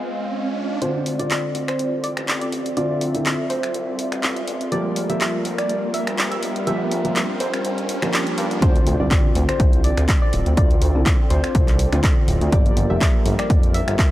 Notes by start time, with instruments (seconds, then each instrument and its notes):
Already playing: felt piano F3 D#4 G#4, analog synth pad G#3 D#5 F5, ambient pad G#3 C4 F4 D#5, riser
0.82 analog synth bass D2, felt piano D3 C4 F4, analog synth pad C4 F4 D5, synth pluck C5, closed hi-hat, riser
1.00 ambient pad A4
1.06 analog synth bass D2, open hi-hat
1.19 analog synth bass C2, felt piano D3 C4 F4, synth pluck D5, closed hi-hat
1.31 clap, closed hi-hat
1.55 analog synth bass D2, open hi-hat
1.68 synth pluck C5, finger snap, closed hi-hat
1.79 analog synth bass C2, closed hi-hat
2.04 synth pluck D5, ambient pad D5, open hi-hat
2.17 analog synth bass A1, finger snap, closed hi-hat
2.28 clap, closed hi-hat
2.41 synth pluck D5, closed hi-hat
2.52 analog synth bass A1, open hi-hat
2.66 closed hi-hat
2.77 analog synth bass D2, felt piano D3 C4 F4, synth pluck D5, analog synth pad E5, closed hi-hat
3.01 analog synth bass D2, open hi-hat
3.14 analog synth bass C2, felt piano D3 C4 E4, closed hi-hat
3.26 clap, closed hi-hat
3.50 analog synth bass D2, synth pluck C5, open hi-hat
3.63 finger snap, closed hi-hat
3.74 analog synth bass C2, closed hi-hat
3.99 open hi-hat
4.12 analog synth bass A1, finger snap, closed hi-hat
4.23 clap, closed hi-hat
4.36 closed hi-hat
4.48 analog synth bass A1, open hi-hat
4.61 closed hi-hat
4.72 analog synth bass G1, felt piano F3 A#3 G4, analog synth pad G3 A#4, ambient pad D4, synth pluck D5, closed hi-hat
4.91 ambient pad G4
4.96 analog synth bass G1, open hi-hat
5.06 analog synth bass F1, felt piano F3 A#3 G4, synth pluck E5, ambient pad G5, closed hi-hat
5.21 clap, closed hi-hat
5.45 analog synth bass G1, ambient pad A#4, open hi-hat
5.58 synth pluck D5, finger snap, closed hi-hat
5.69 analog synth bass F1, closed hi-hat
5.94 synth pluck E5, open hi-hat
6.07 analog synth bass D2, finger snap, closed hi-hat
6.18 clap, closed hi-hat
6.32 synth pluck E5, closed hi-hat
6.43 analog synth bass D1, open hi-hat
6.56 closed hi-hat
6.67 analog synth bass G1, felt piano F3 A#3 G4, synth pluck E5, closed hi-hat
6.91 analog synth bass G1, open hi-hat
7.05 analog synth bass F1, felt piano F3 A#3 F4, closed hi-hat
7.16 clap, closed hi-hat
7.40 analog synth bass G1, synth pluck C5, open hi-hat
7.54 finger snap, closed hi-hat
7.65 analog synth bass F1, closed hi-hat
7.78 closed hi-hat
7.89 open hi-hat
8.02 analog synth bass G1, felt piano F3 A#3 G4, finger snap, closed hi-hat
8.13 clap, closed hi-hat
8.27 closed hi-hat
8.38 analog synth bass G2, open hi-hat
8.51 analog synth bass G1, closed hi-hat
8.62 analog synth bass D2, felt piano D3 C4 F4, analog synth pad C4 F4 D5, synth pluck C5, kick, closed hi-hat, impact
8.76 closed hi-hat
8.87 analog synth bass D2, open hi-hat
9.00 analog synth bass C2, felt piano D3 C4 F4, ambient pad A4, synth pluck D5
9.11 kick, clap, closed hi-hat
9.35 analog synth bass D2, open hi-hat
9.49 ambient pad C5, synth pluck C5, finger snap, closed hi-hat
9.60 analog synth bass C2, kick, closed hi-hat
9.73 closed hi-hat
9.84 synth pluck D5, open hi-hat
9.97 analog synth bass D2, finger snap, closed hi-hat
10.09 kick, clap, closed hi-hat
10.22 synth pluck D5
10.33 analog synth bass D1, open hi-hat
10.46 analog synth bass D2, closed hi-hat
10.57 analog synth bass D2, felt piano D3 C4 F4, synth pluck D5, kick, closed hi-hat
10.71 closed hi-hat
10.82 analog synth bass D2, open hi-hat
10.95 analog synth bass C2, felt piano D3 C4 E4
11.06 kick, clap, closed hi-hat
11.30 analog synth bass D2, synth pluck C5, open hi-hat
11.44 finger snap, closed hi-hat
11.55 analog synth bass C2, kick, closed hi-hat
11.68 clap, closed hi-hat
11.79 open hi-hat
11.93 analog synth bass D2, felt piano D3 C4 F4, finger snap, closed hi-hat
12.04 kick, clap, closed hi-hat
12.28 analog synth bass D1, open hi-hat
12.41 analog synth bass D2, closed hi-hat
12.52 analog synth bass G1, felt piano F3 A#3 G4, analog synth pad G3 A#4, synth pluck D5, kick, closed hi-hat
12.60 ambient pad G4
12.66 closed hi-hat
12.72 ambient pad A#4
12.77 analog synth bass G1, open hi-hat
12.90 analog synth bass F1, felt piano F3 A#3 G4, synth pluck E5
13.01 kick, clap, closed hi-hat
13.26 analog synth bass G1, open hi-hat
13.39 synth pluck D5, finger snap, closed hi-hat
13.50 analog synth bass F1, kick, closed hi-hat
13.63 closed hi-hat
13.74 synth pluck E5, open hi-hat
13.88 analog synth bass G1, finger snap, closed hi-hat
13.99 kick, clap, closed hi-hat